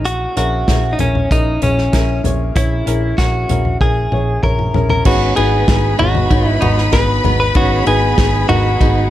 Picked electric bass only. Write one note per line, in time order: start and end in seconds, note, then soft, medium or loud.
0.00 0.25 A#1 medium
0.37 0.63 A#1 medium
0.68 0.94 A#1 medium
0.99 1.25 A#1 medium
1.31 1.56 A#1 medium
1.62 1.88 A#1 medium
1.93 2.19 A#1 loud
2.24 2.50 A#1 medium
2.55 2.81 A#1 medium
2.87 3.12 A#1 medium
3.18 3.44 A#1 medium
3.49 3.75 A#1 medium
3.81 4.06 A#1 medium
4.12 4.38 A#1 medium
4.43 4.69 A#1 medium
4.75 5.00 A#1 medium
5.06 5.31 G#1 loud
5.38 5.63 G#1 loud
5.68 5.94 G#1 medium
6.00 6.26 G#1 loud
6.31 6.56 G#1 medium
6.62 6.88 G#1 medium
6.93 7.19 G#1 medium
7.24 7.50 G#1 medium
7.55 7.81 G#1 loud
7.87 8.13 G#1 medium
8.18 8.44 G#1 loud
8.49 8.75 G#1 medium
8.80 9.06 G#1 loud